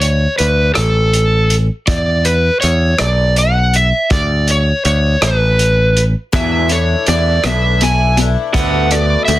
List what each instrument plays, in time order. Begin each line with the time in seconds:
Already playing: picked electric bass D2
0.00 electric slide guitar C#5, closed hi-hat
0.38 picked electric bass D2, electric slide guitar B4, closed hi-hat
0.74 picked electric bass A1, electric slide guitar A4, cross-stick, closed hi-hat
1.13 closed hi-hat
1.50 closed hi-hat
1.87 picked electric bass E2, electric slide guitar D5, kick, closed hi-hat
2.25 electric slide guitar B4, closed hi-hat
2.61 picked electric bass E2, electric slide guitar C#5, closed hi-hat
2.98 picked electric bass B1, electric slide guitar D5, cross-stick, closed hi-hat
3.36 electric slide guitar F#5, closed hi-hat
3.74 electric slide guitar E5, closed hi-hat
4.10 picked electric bass D2, electric slide guitar D5, kick, closed hi-hat
4.48 electric slide guitar C#5, closed hi-hat
4.85 picked electric bass D2, electric slide guitar C#5, closed hi-hat
5.22 picked electric bass A1, electric slide guitar B4, cross-stick, closed hi-hat
5.59 closed hi-hat
5.97 closed hi-hat
6.32 twelve-string acoustic guitar E2 B2 E3 A3 D4 E4, picked electric bass E2, electric slide guitar E5, kick, closed hi-hat
6.69 clean electric guitar E2 B2, twelve-string acoustic guitar E3 A3 D4 E4, electric slide guitar C#5, closed hi-hat
7.07 picked electric bass E2, clean electric guitar E2 B2, twelve-string acoustic guitar E3 A3 D4 E4, electric slide guitar D5, closed hi-hat
7.44 picked electric bass B1, twelve-string acoustic guitar E2 B2 E3 A3 D4 E4, electric slide guitar E5, cross-stick, closed hi-hat
7.81 clean electric guitar E2 B2, twelve-string acoustic guitar E3 A3 D4 E4, electric slide guitar G#5, closed hi-hat
8.17 clean electric guitar E2 B2, twelve-string acoustic guitar D4 E4, closed hi-hat
8.22 twelve-string acoustic guitar E3 A3
8.54 picked electric bass D2, twelve-string acoustic guitar D3 A3 B3 F#4, electric slide guitar F#5, kick, closed hi-hat
8.91 clean electric guitar D3, twelve-string acoustic guitar A3 B3 F#4, electric slide guitar D5, closed hi-hat
9.25 picked electric bass D2, electric slide guitar E5, closed hi-hat
9.29 twelve-string acoustic guitar D3 A3 B3 F#4